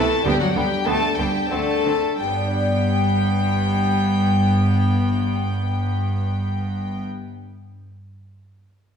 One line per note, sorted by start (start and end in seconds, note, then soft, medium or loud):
0.00 0.23 C3 medium
0.00 0.25 A3 medium
0.00 0.22 E4 medium
0.00 0.23 G4 medium
0.00 0.25 A4 medium
0.00 0.25 A5 loud
0.21 1.45 B3 medium
0.21 1.45 D4 medium
0.21 1.46 G4 medium
0.25 0.34 D2 loud
0.25 0.33 D3 loud
0.25 0.53 D3 medium
0.25 0.32 G3 loud
0.25 0.34 B3 medium
0.25 0.40 G4 loud
0.25 0.40 G5 loud
0.40 0.55 F#3 medium
0.40 0.46 F#4 medium
0.40 0.55 F#5 loud
0.55 0.64 D2 medium
0.55 0.83 D3 medium
0.55 0.63 D3 medium
0.55 0.63 G3 loud
0.55 0.64 B3 medium
0.55 0.86 G4 medium
0.55 0.86 G5 loud
0.86 0.94 D2 medium
0.86 1.15 D3 medium
0.86 0.94 D3 medium
0.86 1.17 A3 medium
0.86 0.94 B3 medium
0.86 1.18 A4 loud
0.86 1.18 A5 loud
1.17 1.26 D2 medium
1.17 1.26 D3 medium
1.17 1.48 D3 medium
1.17 1.26 G3 medium
1.17 1.26 B3 medium
1.17 1.51 G4 loud
1.17 1.50 G5 loud
1.46 2.15 C4 medium
1.46 2.16 D4 medium
1.46 2.17 F#4 medium
1.46 2.18 A4 loud
1.46 2.19 A5 loud
1.51 1.59 D2 medium
1.51 1.81 D3 medium
1.51 1.59 D3 medium
1.51 2.18 A3 medium
1.51 1.59 C4 medium
1.85 1.93 D2 medium
1.85 1.93 D3 medium
1.85 2.16 D3 medium
1.85 1.93 C4 medium
2.19 7.04 G1 medium
2.19 7.03 G2 medium
2.19 7.04 G3 medium
2.19 7.04 B3 medium
2.19 7.03 G5 medium
2.27 7.11 B3 medium
2.34 7.18 D4 medium
2.41 7.25 G4 medium
2.48 7.32 D5 medium